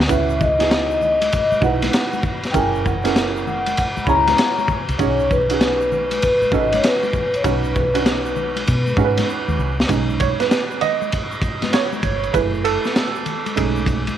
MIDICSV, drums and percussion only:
0, 0, Header, 1, 2, 480
1, 0, Start_track
1, 0, Key_signature, 5, "major"
1, 0, Tempo, 612245
1, 75, Time_signature, 4, 2, 24, 8
1, 11115, End_track
2, 0, Start_track
2, 0, Title_t, "Drums"
2, 2, Note_on_c, 9, 38, 82
2, 73, Note_on_c, 9, 36, 105
2, 73, Note_on_c, 9, 51, 68
2, 77, Note_on_c, 9, 82, 70
2, 80, Note_off_c, 9, 38, 0
2, 152, Note_off_c, 9, 36, 0
2, 152, Note_off_c, 9, 51, 0
2, 156, Note_off_c, 9, 82, 0
2, 232, Note_on_c, 9, 82, 40
2, 310, Note_off_c, 9, 82, 0
2, 320, Note_on_c, 9, 36, 83
2, 320, Note_on_c, 9, 64, 60
2, 320, Note_on_c, 9, 82, 43
2, 398, Note_off_c, 9, 36, 0
2, 398, Note_off_c, 9, 64, 0
2, 398, Note_off_c, 9, 82, 0
2, 470, Note_on_c, 9, 51, 59
2, 471, Note_on_c, 9, 82, 52
2, 475, Note_on_c, 9, 38, 39
2, 549, Note_off_c, 9, 51, 0
2, 549, Note_off_c, 9, 82, 0
2, 553, Note_off_c, 9, 38, 0
2, 556, Note_on_c, 9, 82, 63
2, 558, Note_on_c, 9, 44, 49
2, 558, Note_on_c, 9, 51, 66
2, 559, Note_on_c, 9, 38, 101
2, 634, Note_off_c, 9, 82, 0
2, 636, Note_off_c, 9, 44, 0
2, 636, Note_off_c, 9, 51, 0
2, 637, Note_off_c, 9, 38, 0
2, 709, Note_on_c, 9, 82, 42
2, 787, Note_off_c, 9, 82, 0
2, 795, Note_on_c, 9, 63, 39
2, 795, Note_on_c, 9, 64, 54
2, 795, Note_on_c, 9, 82, 35
2, 874, Note_off_c, 9, 63, 0
2, 874, Note_off_c, 9, 64, 0
2, 874, Note_off_c, 9, 82, 0
2, 953, Note_on_c, 9, 51, 60
2, 954, Note_on_c, 9, 63, 62
2, 954, Note_on_c, 9, 82, 41
2, 1032, Note_off_c, 9, 51, 0
2, 1032, Note_off_c, 9, 63, 0
2, 1032, Note_off_c, 9, 82, 0
2, 1039, Note_on_c, 9, 51, 73
2, 1040, Note_on_c, 9, 82, 71
2, 1045, Note_on_c, 9, 36, 77
2, 1117, Note_off_c, 9, 51, 0
2, 1119, Note_off_c, 9, 82, 0
2, 1123, Note_off_c, 9, 36, 0
2, 1191, Note_on_c, 9, 63, 48
2, 1191, Note_on_c, 9, 82, 45
2, 1268, Note_on_c, 9, 36, 87
2, 1270, Note_off_c, 9, 63, 0
2, 1270, Note_off_c, 9, 82, 0
2, 1280, Note_on_c, 9, 82, 41
2, 1347, Note_off_c, 9, 36, 0
2, 1358, Note_off_c, 9, 82, 0
2, 1429, Note_on_c, 9, 51, 67
2, 1431, Note_on_c, 9, 38, 34
2, 1438, Note_on_c, 9, 63, 68
2, 1438, Note_on_c, 9, 82, 47
2, 1508, Note_off_c, 9, 51, 0
2, 1510, Note_off_c, 9, 38, 0
2, 1514, Note_on_c, 9, 44, 67
2, 1514, Note_on_c, 9, 51, 85
2, 1517, Note_off_c, 9, 63, 0
2, 1517, Note_off_c, 9, 82, 0
2, 1522, Note_on_c, 9, 38, 111
2, 1522, Note_on_c, 9, 82, 61
2, 1593, Note_off_c, 9, 44, 0
2, 1593, Note_off_c, 9, 51, 0
2, 1600, Note_off_c, 9, 38, 0
2, 1601, Note_off_c, 9, 82, 0
2, 1672, Note_on_c, 9, 63, 62
2, 1672, Note_on_c, 9, 82, 42
2, 1750, Note_on_c, 9, 36, 87
2, 1751, Note_off_c, 9, 63, 0
2, 1751, Note_off_c, 9, 82, 0
2, 1756, Note_on_c, 9, 64, 46
2, 1756, Note_on_c, 9, 82, 35
2, 1829, Note_off_c, 9, 36, 0
2, 1834, Note_off_c, 9, 64, 0
2, 1834, Note_off_c, 9, 82, 0
2, 1908, Note_on_c, 9, 51, 44
2, 1916, Note_on_c, 9, 82, 42
2, 1921, Note_on_c, 9, 38, 32
2, 1987, Note_off_c, 9, 51, 0
2, 1993, Note_on_c, 9, 36, 112
2, 1993, Note_on_c, 9, 51, 69
2, 1995, Note_off_c, 9, 82, 0
2, 1999, Note_off_c, 9, 38, 0
2, 2001, Note_on_c, 9, 82, 70
2, 2071, Note_off_c, 9, 51, 0
2, 2072, Note_off_c, 9, 36, 0
2, 2079, Note_off_c, 9, 82, 0
2, 2156, Note_on_c, 9, 82, 44
2, 2234, Note_off_c, 9, 82, 0
2, 2240, Note_on_c, 9, 36, 81
2, 2243, Note_on_c, 9, 64, 61
2, 2243, Note_on_c, 9, 82, 45
2, 2319, Note_off_c, 9, 36, 0
2, 2322, Note_off_c, 9, 64, 0
2, 2322, Note_off_c, 9, 82, 0
2, 2390, Note_on_c, 9, 51, 62
2, 2394, Note_on_c, 9, 38, 39
2, 2394, Note_on_c, 9, 82, 50
2, 2468, Note_off_c, 9, 51, 0
2, 2472, Note_off_c, 9, 38, 0
2, 2473, Note_off_c, 9, 82, 0
2, 2477, Note_on_c, 9, 38, 98
2, 2477, Note_on_c, 9, 44, 46
2, 2477, Note_on_c, 9, 51, 67
2, 2485, Note_on_c, 9, 82, 66
2, 2555, Note_off_c, 9, 44, 0
2, 2555, Note_off_c, 9, 51, 0
2, 2556, Note_off_c, 9, 38, 0
2, 2563, Note_off_c, 9, 82, 0
2, 2636, Note_on_c, 9, 82, 49
2, 2715, Note_off_c, 9, 82, 0
2, 2721, Note_on_c, 9, 63, 42
2, 2721, Note_on_c, 9, 64, 52
2, 2721, Note_on_c, 9, 82, 40
2, 2800, Note_off_c, 9, 63, 0
2, 2800, Note_off_c, 9, 64, 0
2, 2800, Note_off_c, 9, 82, 0
2, 2872, Note_on_c, 9, 51, 56
2, 2878, Note_on_c, 9, 63, 59
2, 2878, Note_on_c, 9, 82, 44
2, 2950, Note_off_c, 9, 51, 0
2, 2957, Note_off_c, 9, 63, 0
2, 2957, Note_off_c, 9, 82, 0
2, 2958, Note_on_c, 9, 51, 77
2, 2962, Note_on_c, 9, 82, 65
2, 2966, Note_on_c, 9, 36, 74
2, 3036, Note_off_c, 9, 51, 0
2, 3040, Note_off_c, 9, 82, 0
2, 3044, Note_off_c, 9, 36, 0
2, 3111, Note_on_c, 9, 63, 45
2, 3111, Note_on_c, 9, 82, 45
2, 3189, Note_off_c, 9, 63, 0
2, 3189, Note_off_c, 9, 82, 0
2, 3189, Note_on_c, 9, 36, 93
2, 3203, Note_on_c, 9, 82, 44
2, 3267, Note_off_c, 9, 36, 0
2, 3282, Note_off_c, 9, 82, 0
2, 3351, Note_on_c, 9, 51, 62
2, 3353, Note_on_c, 9, 38, 37
2, 3359, Note_on_c, 9, 63, 74
2, 3359, Note_on_c, 9, 82, 50
2, 3429, Note_off_c, 9, 51, 0
2, 3431, Note_off_c, 9, 38, 0
2, 3435, Note_on_c, 9, 44, 58
2, 3435, Note_on_c, 9, 51, 84
2, 3437, Note_off_c, 9, 63, 0
2, 3437, Note_off_c, 9, 82, 0
2, 3438, Note_on_c, 9, 82, 64
2, 3443, Note_on_c, 9, 38, 113
2, 3514, Note_off_c, 9, 44, 0
2, 3514, Note_off_c, 9, 51, 0
2, 3516, Note_off_c, 9, 82, 0
2, 3521, Note_off_c, 9, 38, 0
2, 3594, Note_on_c, 9, 63, 65
2, 3594, Note_on_c, 9, 82, 43
2, 3670, Note_on_c, 9, 36, 91
2, 3672, Note_off_c, 9, 63, 0
2, 3672, Note_off_c, 9, 82, 0
2, 3675, Note_on_c, 9, 64, 50
2, 3675, Note_on_c, 9, 82, 38
2, 3749, Note_off_c, 9, 36, 0
2, 3754, Note_off_c, 9, 64, 0
2, 3754, Note_off_c, 9, 82, 0
2, 3830, Note_on_c, 9, 51, 43
2, 3838, Note_on_c, 9, 82, 41
2, 3909, Note_off_c, 9, 51, 0
2, 3913, Note_on_c, 9, 51, 62
2, 3914, Note_on_c, 9, 36, 105
2, 3917, Note_off_c, 9, 82, 0
2, 3924, Note_on_c, 9, 82, 62
2, 3991, Note_off_c, 9, 51, 0
2, 3992, Note_off_c, 9, 36, 0
2, 4003, Note_off_c, 9, 82, 0
2, 4073, Note_on_c, 9, 82, 40
2, 4152, Note_off_c, 9, 82, 0
2, 4161, Note_on_c, 9, 36, 74
2, 4165, Note_on_c, 9, 64, 55
2, 4165, Note_on_c, 9, 82, 41
2, 4239, Note_off_c, 9, 36, 0
2, 4243, Note_off_c, 9, 64, 0
2, 4243, Note_off_c, 9, 82, 0
2, 4309, Note_on_c, 9, 51, 62
2, 4314, Note_on_c, 9, 82, 52
2, 4387, Note_off_c, 9, 51, 0
2, 4393, Note_off_c, 9, 82, 0
2, 4396, Note_on_c, 9, 44, 47
2, 4396, Note_on_c, 9, 51, 64
2, 4397, Note_on_c, 9, 38, 105
2, 4401, Note_on_c, 9, 82, 70
2, 4475, Note_off_c, 9, 44, 0
2, 4475, Note_off_c, 9, 51, 0
2, 4476, Note_off_c, 9, 38, 0
2, 4479, Note_off_c, 9, 82, 0
2, 4552, Note_on_c, 9, 82, 41
2, 4631, Note_off_c, 9, 82, 0
2, 4640, Note_on_c, 9, 63, 41
2, 4640, Note_on_c, 9, 64, 55
2, 4640, Note_on_c, 9, 82, 43
2, 4719, Note_off_c, 9, 63, 0
2, 4719, Note_off_c, 9, 64, 0
2, 4719, Note_off_c, 9, 82, 0
2, 4791, Note_on_c, 9, 51, 57
2, 4793, Note_on_c, 9, 63, 59
2, 4793, Note_on_c, 9, 82, 44
2, 4869, Note_off_c, 9, 51, 0
2, 4872, Note_off_c, 9, 63, 0
2, 4872, Note_off_c, 9, 82, 0
2, 4879, Note_on_c, 9, 51, 80
2, 4879, Note_on_c, 9, 82, 66
2, 4886, Note_on_c, 9, 36, 76
2, 4957, Note_off_c, 9, 51, 0
2, 4957, Note_off_c, 9, 82, 0
2, 4965, Note_off_c, 9, 36, 0
2, 5032, Note_on_c, 9, 63, 43
2, 5032, Note_on_c, 9, 82, 45
2, 5110, Note_off_c, 9, 63, 0
2, 5110, Note_off_c, 9, 82, 0
2, 5110, Note_on_c, 9, 36, 94
2, 5123, Note_on_c, 9, 82, 39
2, 5188, Note_off_c, 9, 36, 0
2, 5201, Note_off_c, 9, 82, 0
2, 5272, Note_on_c, 9, 51, 64
2, 5282, Note_on_c, 9, 63, 70
2, 5282, Note_on_c, 9, 82, 50
2, 5350, Note_off_c, 9, 51, 0
2, 5359, Note_on_c, 9, 44, 66
2, 5359, Note_on_c, 9, 51, 94
2, 5361, Note_off_c, 9, 63, 0
2, 5361, Note_off_c, 9, 82, 0
2, 5365, Note_on_c, 9, 82, 64
2, 5366, Note_on_c, 9, 38, 117
2, 5437, Note_off_c, 9, 44, 0
2, 5437, Note_off_c, 9, 51, 0
2, 5444, Note_off_c, 9, 82, 0
2, 5445, Note_off_c, 9, 38, 0
2, 5513, Note_on_c, 9, 63, 59
2, 5513, Note_on_c, 9, 82, 45
2, 5591, Note_off_c, 9, 63, 0
2, 5591, Note_off_c, 9, 82, 0
2, 5593, Note_on_c, 9, 36, 78
2, 5596, Note_on_c, 9, 64, 48
2, 5596, Note_on_c, 9, 82, 36
2, 5671, Note_off_c, 9, 36, 0
2, 5674, Note_off_c, 9, 64, 0
2, 5674, Note_off_c, 9, 82, 0
2, 5753, Note_on_c, 9, 51, 42
2, 5756, Note_on_c, 9, 82, 44
2, 5831, Note_off_c, 9, 51, 0
2, 5834, Note_off_c, 9, 82, 0
2, 5836, Note_on_c, 9, 36, 105
2, 5836, Note_on_c, 9, 51, 68
2, 5840, Note_on_c, 9, 82, 70
2, 5914, Note_off_c, 9, 36, 0
2, 5914, Note_off_c, 9, 51, 0
2, 5918, Note_off_c, 9, 82, 0
2, 5991, Note_on_c, 9, 82, 42
2, 6069, Note_off_c, 9, 82, 0
2, 6080, Note_on_c, 9, 64, 59
2, 6080, Note_on_c, 9, 82, 41
2, 6083, Note_on_c, 9, 36, 83
2, 6159, Note_off_c, 9, 64, 0
2, 6159, Note_off_c, 9, 82, 0
2, 6161, Note_off_c, 9, 36, 0
2, 6232, Note_on_c, 9, 82, 51
2, 6233, Note_on_c, 9, 51, 64
2, 6311, Note_off_c, 9, 51, 0
2, 6311, Note_off_c, 9, 82, 0
2, 6318, Note_on_c, 9, 44, 50
2, 6318, Note_on_c, 9, 51, 70
2, 6318, Note_on_c, 9, 82, 64
2, 6319, Note_on_c, 9, 38, 101
2, 6396, Note_off_c, 9, 82, 0
2, 6397, Note_off_c, 9, 38, 0
2, 6397, Note_off_c, 9, 44, 0
2, 6397, Note_off_c, 9, 51, 0
2, 6472, Note_on_c, 9, 82, 43
2, 6551, Note_off_c, 9, 82, 0
2, 6556, Note_on_c, 9, 63, 39
2, 6556, Note_on_c, 9, 64, 54
2, 6556, Note_on_c, 9, 82, 42
2, 6634, Note_off_c, 9, 63, 0
2, 6634, Note_off_c, 9, 64, 0
2, 6634, Note_off_c, 9, 82, 0
2, 6712, Note_on_c, 9, 63, 59
2, 6712, Note_on_c, 9, 82, 40
2, 6715, Note_on_c, 9, 51, 51
2, 6790, Note_off_c, 9, 63, 0
2, 6790, Note_off_c, 9, 82, 0
2, 6794, Note_off_c, 9, 51, 0
2, 6801, Note_on_c, 9, 51, 75
2, 6801, Note_on_c, 9, 82, 66
2, 6808, Note_on_c, 9, 36, 71
2, 6879, Note_off_c, 9, 51, 0
2, 6879, Note_off_c, 9, 82, 0
2, 6886, Note_off_c, 9, 36, 0
2, 6953, Note_on_c, 9, 63, 45
2, 6953, Note_on_c, 9, 82, 46
2, 7031, Note_off_c, 9, 63, 0
2, 7031, Note_off_c, 9, 82, 0
2, 7031, Note_on_c, 9, 36, 105
2, 7042, Note_on_c, 9, 82, 42
2, 7109, Note_off_c, 9, 36, 0
2, 7120, Note_off_c, 9, 82, 0
2, 7193, Note_on_c, 9, 51, 65
2, 7195, Note_on_c, 9, 38, 32
2, 7201, Note_on_c, 9, 63, 76
2, 7201, Note_on_c, 9, 82, 50
2, 7271, Note_off_c, 9, 51, 0
2, 7273, Note_off_c, 9, 38, 0
2, 7279, Note_off_c, 9, 63, 0
2, 7279, Note_off_c, 9, 82, 0
2, 7286, Note_on_c, 9, 82, 55
2, 7364, Note_off_c, 9, 82, 0
2, 7439, Note_on_c, 9, 63, 61
2, 7439, Note_on_c, 9, 82, 44
2, 7518, Note_off_c, 9, 63, 0
2, 7518, Note_off_c, 9, 82, 0
2, 7521, Note_on_c, 9, 64, 46
2, 7521, Note_on_c, 9, 82, 37
2, 7599, Note_off_c, 9, 64, 0
2, 7599, Note_off_c, 9, 82, 0
2, 7683, Note_on_c, 9, 38, 79
2, 7684, Note_on_c, 9, 82, 41
2, 7755, Note_on_c, 9, 36, 99
2, 7755, Note_on_c, 9, 51, 68
2, 7762, Note_off_c, 9, 38, 0
2, 7763, Note_off_c, 9, 82, 0
2, 7765, Note_on_c, 9, 82, 65
2, 7833, Note_off_c, 9, 36, 0
2, 7833, Note_off_c, 9, 51, 0
2, 7844, Note_off_c, 9, 82, 0
2, 7916, Note_on_c, 9, 82, 41
2, 7995, Note_off_c, 9, 82, 0
2, 7996, Note_on_c, 9, 51, 62
2, 8002, Note_on_c, 9, 36, 80
2, 8007, Note_on_c, 9, 82, 38
2, 8074, Note_off_c, 9, 51, 0
2, 8081, Note_off_c, 9, 36, 0
2, 8086, Note_off_c, 9, 82, 0
2, 8152, Note_on_c, 9, 51, 43
2, 8156, Note_on_c, 9, 38, 36
2, 8157, Note_on_c, 9, 82, 47
2, 8231, Note_off_c, 9, 51, 0
2, 8235, Note_off_c, 9, 38, 0
2, 8236, Note_off_c, 9, 82, 0
2, 8240, Note_on_c, 9, 44, 51
2, 8240, Note_on_c, 9, 51, 63
2, 8241, Note_on_c, 9, 38, 93
2, 8242, Note_on_c, 9, 82, 69
2, 8319, Note_off_c, 9, 44, 0
2, 8319, Note_off_c, 9, 51, 0
2, 8320, Note_off_c, 9, 38, 0
2, 8321, Note_off_c, 9, 82, 0
2, 8396, Note_on_c, 9, 82, 41
2, 8474, Note_off_c, 9, 82, 0
2, 8475, Note_on_c, 9, 51, 53
2, 8482, Note_on_c, 9, 63, 40
2, 8482, Note_on_c, 9, 64, 52
2, 8482, Note_on_c, 9, 82, 39
2, 8554, Note_off_c, 9, 51, 0
2, 8561, Note_off_c, 9, 63, 0
2, 8561, Note_off_c, 9, 64, 0
2, 8561, Note_off_c, 9, 82, 0
2, 8637, Note_on_c, 9, 63, 62
2, 8637, Note_on_c, 9, 82, 42
2, 8715, Note_off_c, 9, 63, 0
2, 8715, Note_off_c, 9, 82, 0
2, 8720, Note_on_c, 9, 51, 77
2, 8723, Note_on_c, 9, 82, 68
2, 8727, Note_on_c, 9, 36, 71
2, 8798, Note_off_c, 9, 51, 0
2, 8801, Note_off_c, 9, 82, 0
2, 8805, Note_off_c, 9, 36, 0
2, 8872, Note_on_c, 9, 82, 46
2, 8950, Note_off_c, 9, 82, 0
2, 8950, Note_on_c, 9, 36, 96
2, 8956, Note_on_c, 9, 51, 49
2, 8961, Note_on_c, 9, 82, 43
2, 9028, Note_off_c, 9, 36, 0
2, 9035, Note_off_c, 9, 51, 0
2, 9040, Note_off_c, 9, 82, 0
2, 9110, Note_on_c, 9, 51, 47
2, 9112, Note_on_c, 9, 38, 36
2, 9119, Note_on_c, 9, 63, 73
2, 9119, Note_on_c, 9, 82, 47
2, 9188, Note_off_c, 9, 51, 0
2, 9190, Note_off_c, 9, 38, 0
2, 9196, Note_on_c, 9, 44, 59
2, 9196, Note_on_c, 9, 51, 84
2, 9197, Note_off_c, 9, 63, 0
2, 9197, Note_off_c, 9, 82, 0
2, 9201, Note_on_c, 9, 82, 57
2, 9203, Note_on_c, 9, 38, 100
2, 9274, Note_off_c, 9, 44, 0
2, 9274, Note_off_c, 9, 51, 0
2, 9280, Note_off_c, 9, 82, 0
2, 9282, Note_off_c, 9, 38, 0
2, 9350, Note_on_c, 9, 63, 62
2, 9350, Note_on_c, 9, 82, 41
2, 9428, Note_off_c, 9, 63, 0
2, 9428, Note_off_c, 9, 82, 0
2, 9430, Note_on_c, 9, 51, 58
2, 9430, Note_on_c, 9, 64, 49
2, 9430, Note_on_c, 9, 82, 36
2, 9431, Note_on_c, 9, 36, 85
2, 9508, Note_off_c, 9, 64, 0
2, 9508, Note_off_c, 9, 82, 0
2, 9509, Note_off_c, 9, 51, 0
2, 9510, Note_off_c, 9, 36, 0
2, 9592, Note_on_c, 9, 51, 29
2, 9593, Note_on_c, 9, 82, 41
2, 9670, Note_off_c, 9, 51, 0
2, 9671, Note_off_c, 9, 82, 0
2, 9675, Note_on_c, 9, 36, 104
2, 9677, Note_on_c, 9, 51, 61
2, 9680, Note_on_c, 9, 82, 69
2, 9753, Note_off_c, 9, 36, 0
2, 9755, Note_off_c, 9, 51, 0
2, 9758, Note_off_c, 9, 82, 0
2, 9830, Note_on_c, 9, 82, 38
2, 9909, Note_off_c, 9, 82, 0
2, 9917, Note_on_c, 9, 51, 67
2, 9921, Note_on_c, 9, 82, 39
2, 9995, Note_off_c, 9, 51, 0
2, 10000, Note_off_c, 9, 82, 0
2, 10071, Note_on_c, 9, 82, 50
2, 10077, Note_on_c, 9, 38, 41
2, 10150, Note_off_c, 9, 82, 0
2, 10155, Note_off_c, 9, 38, 0
2, 10158, Note_on_c, 9, 82, 66
2, 10160, Note_on_c, 9, 44, 47
2, 10160, Note_on_c, 9, 51, 65
2, 10161, Note_on_c, 9, 38, 108
2, 10236, Note_off_c, 9, 82, 0
2, 10238, Note_off_c, 9, 44, 0
2, 10238, Note_off_c, 9, 51, 0
2, 10239, Note_off_c, 9, 38, 0
2, 10312, Note_on_c, 9, 82, 45
2, 10391, Note_off_c, 9, 82, 0
2, 10394, Note_on_c, 9, 51, 54
2, 10396, Note_on_c, 9, 63, 37
2, 10396, Note_on_c, 9, 64, 56
2, 10396, Note_on_c, 9, 82, 37
2, 10473, Note_off_c, 9, 51, 0
2, 10474, Note_off_c, 9, 63, 0
2, 10474, Note_off_c, 9, 64, 0
2, 10474, Note_off_c, 9, 82, 0
2, 10554, Note_on_c, 9, 51, 41
2, 10555, Note_on_c, 9, 63, 59
2, 10555, Note_on_c, 9, 82, 44
2, 10633, Note_off_c, 9, 51, 0
2, 10634, Note_off_c, 9, 63, 0
2, 10634, Note_off_c, 9, 82, 0
2, 10638, Note_on_c, 9, 82, 69
2, 10640, Note_on_c, 9, 51, 77
2, 10646, Note_on_c, 9, 36, 79
2, 10716, Note_off_c, 9, 82, 0
2, 10719, Note_off_c, 9, 51, 0
2, 10725, Note_off_c, 9, 36, 0
2, 10789, Note_on_c, 9, 82, 48
2, 10867, Note_off_c, 9, 82, 0
2, 10869, Note_on_c, 9, 36, 93
2, 10877, Note_on_c, 9, 51, 54
2, 10881, Note_on_c, 9, 82, 44
2, 10948, Note_off_c, 9, 36, 0
2, 10955, Note_off_c, 9, 51, 0
2, 10960, Note_off_c, 9, 82, 0
2, 11031, Note_on_c, 9, 51, 47
2, 11038, Note_on_c, 9, 63, 65
2, 11038, Note_on_c, 9, 82, 50
2, 11109, Note_off_c, 9, 51, 0
2, 11115, Note_off_c, 9, 63, 0
2, 11115, Note_off_c, 9, 82, 0
2, 11115, End_track
0, 0, End_of_file